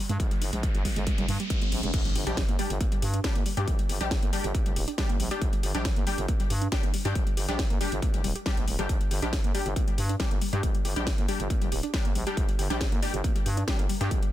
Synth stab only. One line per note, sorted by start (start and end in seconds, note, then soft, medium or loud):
2.27 2.37 G3 medium
2.27 2.37 D4 medium
2.27 2.37 G4 medium
2.59 2.70 G3 medium
2.59 2.70 D4 medium
2.59 2.70 G4 medium
3.24 3.35 G3 medium
3.24 3.35 D4 medium
3.24 3.35 G4 loud
3.57 3.67 G3 medium
3.57 3.67 D4 medium
3.57 3.67 G4 medium
4.01 4.10 G3 medium
4.01 4.10 D4 medium
4.01 4.10 G4 loud
4.33 4.43 G3 medium
4.33 4.43 D4 medium
4.33 4.43 G4 medium
4.98 5.09 G3 medium
4.98 5.09 D4 medium
4.98 5.09 G4 loud
5.31 5.41 G3 medium
5.31 5.41 D4 medium
5.31 5.41 G4 medium
5.75 5.84 G3 medium
5.75 5.84 D4 medium
5.75 5.84 G4 loud
6.07 6.17 G3 medium
6.07 6.17 D4 medium
6.07 6.17 G4 medium
6.72 6.83 G3 medium
6.72 6.83 D4 medium
6.72 6.83 G4 loud
7.05 7.15 G3 medium
7.05 7.15 D4 medium
7.05 7.15 G4 medium
7.48 7.58 G3 medium
7.48 7.58 D4 medium
7.48 7.58 G4 loud
7.81 7.91 G3 medium
7.81 7.91 D4 medium
7.81 7.91 G4 medium
8.46 8.57 G3 medium
8.46 8.57 D4 medium
8.46 8.57 G4 loud
8.79 8.89 G3 medium
8.79 8.89 D4 medium
8.79 8.89 G4 medium
9.22 9.32 G3 medium
9.22 9.32 D4 medium
9.22 9.32 G4 loud
9.54 9.65 G3 medium
9.54 9.65 D4 medium
9.54 9.65 G4 medium
10.20 10.30 G3 medium
10.20 10.30 D4 medium
10.20 10.30 G4 loud
10.53 10.63 G3 medium
10.53 10.63 D4 medium
10.53 10.63 G4 medium
10.96 11.06 G3 medium
10.96 11.06 D4 medium
10.96 11.06 G4 loud
11.28 11.39 G3 medium
11.28 11.39 D4 medium
11.28 11.39 G4 medium
11.94 12.04 G3 medium
11.94 12.04 D4 medium
11.94 12.04 G4 loud
12.27 12.37 G3 medium
12.27 12.37 D4 medium
12.27 12.37 G4 medium
12.70 12.80 G3 medium
12.70 12.80 D4 medium
12.70 12.80 G4 medium
13.02 13.13 G3 medium
13.02 13.13 D4 medium
13.02 13.13 G4 medium
13.68 13.78 G3 medium
13.68 13.78 D4 medium
13.68 13.78 G4 loud
14.01 14.11 G3 medium
14.01 14.11 D4 medium
14.01 14.11 G4 medium